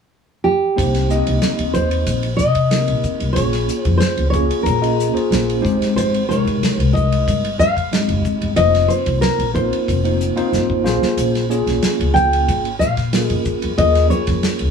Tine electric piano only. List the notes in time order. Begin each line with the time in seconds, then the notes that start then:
0.76 A#3 C4 D#4 G4 C5
1.10 A#3 C4 D#4 G4 D#5
2.70 A#3 C4 D#4 G4 A#4
3.35 A#3 C#4 F4 G#4 C#5
4.33 A#3 C#4 F4 G#4 C#5
4.81 A#3 C#4 F4 G#4 D#5
5.14 A#3 C#4 F4 G#4 C5
5.61 G#3 C4 D#4 G4 C5
6.29 C3 G#3 D#4 G4 A#4
7.92 G#3 C4 D#4 G4 D#5
8.56 A#3 C4 D#4 F4 C5
9.54 A#3 C4 D#4 F4 A#4
10.04 A#3 C4 D#4 F4 C5
10.36 A#3 C4 D#4 F4 C5
10.84 A#3 C#4 F4 G#4 C5
11.49 A#3 C#4 F4 G#4 C#5
13.13 A#3 C#4 F4 G#4 A#4
13.77 A#3 C#4 F4 G#4 A#4